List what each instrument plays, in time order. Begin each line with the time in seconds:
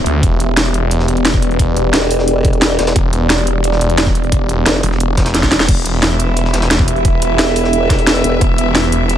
Already playing: ambient pad B3 G4 E5
0.06 detuned saw bass D2, closed hi-hat
0.23 detuned saw bass E1, ambient pad D5, kick, closed hi-hat
0.40 closed hi-hat
0.57 snare, closed hi-hat
0.66 closed hi-hat
0.74 closed hi-hat
0.91 closed hi-hat
1.00 snare
1.08 detuned saw bass E1, closed hi-hat
1.17 closed hi-hat
1.25 snare, closed hi-hat
1.34 kick, snare
1.42 closed hi-hat
1.51 closed hi-hat
1.59 kick, closed hi-hat
1.76 closed hi-hat
1.94 wobble bass E1, snare, closed hi-hat
2.02 snare
2.11 closed hi-hat, open hi-hat
2.19 snare
2.28 closed hi-hat
2.45 kick, closed hi-hat
2.53 closed hi-hat
2.62 snare, closed hi-hat
2.79 wobble bass E1, snare, closed hi-hat
2.87 snare, closed hi-hat
2.96 detuned saw bass E1, kick, closed hi-hat
3.13 closed hi-hat
3.30 snare, closed hi-hat
3.38 closed hi-hat
3.47 closed hi-hat
3.64 closed hi-hat
3.73 snare
3.81 detuned saw bass E1, closed hi-hat
3.90 closed hi-hat
3.98 snare, closed hi-hat
4.07 kick, snare
4.15 closed hi-hat
4.24 closed hi-hat
4.32 kick, closed hi-hat
4.49 closed hi-hat
4.66 wobble bass F1, snare, closed hi-hat
4.75 snare
4.83 detuned saw bass E1, closed hi-hat, open hi-hat
4.92 snare
5.00 closed hi-hat
5.17 kick, snare, closed hi-hat
5.26 snare, closed hi-hat
5.34 snare, closed hi-hat
5.43 kick, snare, closed hi-hat
5.51 snare, closed hi-hat
5.60 snare
5.69 detuned saw bass E1, ambient pad B3 G4 E5, string section E4, kick, closed hi-hat, crash
5.86 closed hi-hat
6.02 string section B4 E5, snare, closed hi-hat
6.11 closed hi-hat
6.20 closed hi-hat
6.37 closed hi-hat
6.45 snare
6.54 detuned saw bass E1, snare, closed hi-hat
6.62 snare, closed hi-hat
6.71 snare, closed hi-hat
6.79 kick, snare
6.88 closed hi-hat
6.96 closed hi-hat
7.05 kick, closed hi-hat
7.22 closed hi-hat
7.39 wobble bass E1, snare, closed hi-hat
7.47 snare
7.56 closed hi-hat, open hi-hat
7.65 snare
7.73 closed hi-hat
7.90 kick, snare, closed hi-hat
7.99 closed hi-hat
8.07 snare, closed hi-hat
8.16 closed hi-hat
8.24 wobble bass E1, closed hi-hat
8.41 detuned saw bass E1, ambient pad B4, kick, closed hi-hat
8.58 closed hi-hat
8.75 snare, closed hi-hat
8.84 closed hi-hat
8.92 closed hi-hat
9.09 closed hi-hat